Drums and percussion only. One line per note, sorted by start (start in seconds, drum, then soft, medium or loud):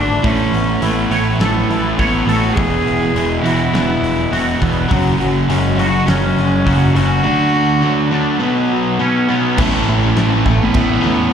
0.24 kick loud
0.24 open hi-hat medium
0.54 open hi-hat medium
0.82 open hi-hat medium
1.11 open hi-hat medium
1.41 snare loud
1.41 open hi-hat medium
1.70 open hi-hat medium
1.99 kick medium
1.99 open hi-hat medium
2.29 open hi-hat medium
2.57 kick loud
2.57 open hi-hat medium
2.87 open hi-hat medium
3.16 open hi-hat medium
3.46 open hi-hat medium
3.75 snare loud
3.75 open hi-hat medium
4.04 open hi-hat medium
4.33 open hi-hat medium
4.62 kick medium
4.62 open hi-hat medium
4.91 kick loud
4.91 open hi-hat medium
5.21 open hi-hat medium
5.50 open hi-hat medium
5.79 open hi-hat medium
6.08 snare loud
6.08 open hi-hat medium
6.38 open hi-hat medium
6.67 kick medium
6.67 open hi-hat medium
6.96 open hi-hat medium
9.58 kick loud
9.58 crash loud
9.58 crash medium
10.16 snare medium
10.16 crash medium
10.46 kick medium
10.74 kick loud
10.74 crash medium